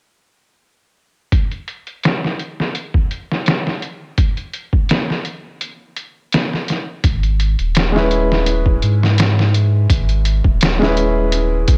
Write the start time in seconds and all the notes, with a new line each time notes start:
1.32 kick, closed hi-hat
1.51 closed hi-hat
1.68 closed hi-hat
1.87 closed hi-hat
2.03 snare, closed hi-hat
2.24 snare
2.39 closed hi-hat
2.60 snare
2.75 closed hi-hat
2.94 kick
3.11 closed hi-hat
3.32 snare
3.46 snare, closed hi-hat
3.67 snare
3.82 closed hi-hat
4.18 kick, closed hi-hat
4.37 closed hi-hat
4.53 closed hi-hat
4.73 kick
4.89 snare, closed hi-hat
5.10 snare
5.25 closed hi-hat
5.61 closed hi-hat
5.96 closed hi-hat
6.32 snare, closed hi-hat
6.53 snare
6.68 snare, closed hi-hat
7.04 G#1, kick, closed hi-hat
7.23 closed hi-hat
7.40 closed hi-hat
7.59 D#1, closed hi-hat
7.75 snare, closed hi-hat
7.92 G#3 C#4
7.96 E4 B4, snare
8.11 closed hi-hat
8.32 snare
8.46 closed hi-hat
8.66 kick
8.82 G#2, closed hi-hat
9.03 snare
9.18 snare, closed hi-hat
9.39 snare
9.54 closed hi-hat
9.90 G#1, kick, closed hi-hat
10.09 closed hi-hat
10.25 closed hi-hat
10.44 D#1, kick
10.61 snare, closed hi-hat
10.79 G#3 C#4, snare
10.83 E4 B4
10.97 closed hi-hat
11.32 closed hi-hat
11.68 B1, kick, closed hi-hat